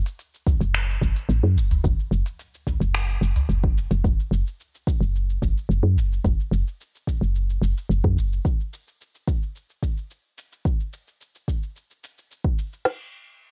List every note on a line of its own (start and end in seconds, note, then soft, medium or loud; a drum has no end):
0.06 open hi-hat medium
0.06 shaker soft
0.19 open hi-hat soft
0.19 shaker soft
0.34 shaker soft
0.47 kick loud
0.47 udu medium
0.47 shaker medium
0.61 0.97 F#1 medium
0.61 open hi-hat medium
0.61 shaker soft
0.74 finger snap medium
0.74 open hi-hat soft
0.74 shaker soft
0.90 shaker soft
1.01 1.13 F#1 medium
1.01 kick medium
1.01 shaker medium
1.16 open hi-hat medium
1.16 shaker soft
1.29 1.40 A1 loud
1.29 open hi-hat soft
1.29 shaker soft
1.43 1.58 F#2 medium
1.56 1.79 F#1 loud
1.56 shaker medium
1.71 open hi-hat soft
1.71 udu medium
1.71 shaker soft
1.84 1.96 F#1 loud
1.84 kick loud
1.84 open hi-hat soft
1.84 shaker soft
1.99 shaker soft
2.11 2.23 F#1 loud
2.11 shaker medium
2.26 open hi-hat soft
2.26 shaker soft
2.39 open hi-hat soft
2.39 shaker soft
2.54 shaker soft
2.67 kick medium
2.67 udu medium
2.67 shaker medium
2.81 3.17 F#1 medium
2.81 open hi-hat soft
2.81 shaker soft
2.95 finger snap medium
2.95 open hi-hat soft
2.95 shaker soft
3.10 shaker soft
3.21 3.33 F#1 medium
3.21 shaker medium
3.36 open hi-hat soft
3.36 udu loud
3.36 shaker soft
3.49 3.86 F#1 medium
3.49 open hi-hat soft
3.49 shaker soft
3.64 kick loud
3.78 shaker medium
3.91 4.02 F#1 loud
3.91 open hi-hat medium
3.91 shaker soft
4.04 4.16 F#1 loud
4.04 kick loud
4.04 shaker soft
4.20 shaker soft
4.31 4.43 F#1 loud
4.31 shaker medium
4.47 shaker soft
4.60 shaker soft
4.75 shaker soft
4.87 kick loud
4.87 shaker medium
5.00 5.37 F#1 medium
5.00 shaker soft
5.15 shaker soft
5.29 shaker soft
5.42 5.53 F#1 medium
5.42 kick medium
5.42 shaker medium
5.57 shaker soft
5.69 5.81 F#1 loud
5.69 shaker soft
5.83 5.98 F#2 medium
5.96 6.19 F#1 medium
5.96 shaker medium
6.13 shaker soft
6.25 6.36 F#1 loud
6.25 kick loud
6.25 shaker soft
6.40 shaker soft
6.51 6.63 F#1 loud
6.51 shaker medium
6.67 shaker soft
6.81 shaker soft
6.95 shaker soft
7.07 kick medium
7.07 shaker medium
7.21 7.58 F#1 medium
7.21 shaker soft
7.35 shaker soft
7.50 shaker soft
7.62 7.73 F#1 medium
7.62 shaker medium
7.77 shaker soft
7.89 8.01 F#1 loud
7.89 shaker soft
8.04 8.18 F#2 medium
8.04 kick loud
8.17 8.39 F#1 loud
8.17 shaker medium
8.33 shaker soft
8.45 kick loud
8.45 shaker soft
8.60 shaker soft
8.73 shaker medium
8.88 shaker soft
9.01 shaker soft
9.15 shaker soft
9.28 kick medium
9.28 shaker medium
9.42 shaker soft
9.56 shaker soft
9.70 shaker soft
9.83 kick medium
9.83 shaker medium
9.97 shaker soft
10.11 shaker soft
10.38 shaker medium
10.52 shaker soft
10.65 kick loud
10.65 shaker soft
10.80 shaker soft
10.93 shaker medium
11.07 shaker soft
11.21 shaker soft
11.35 shaker soft
11.48 kick soft
11.48 shaker medium
11.63 shaker soft
11.76 shaker soft
11.90 shaker soft
12.04 shaker medium
12.18 shaker soft
12.31 shaker soft
12.45 kick medium
12.59 shaker medium
12.73 shaker soft
12.85 snare loud
12.85 crash medium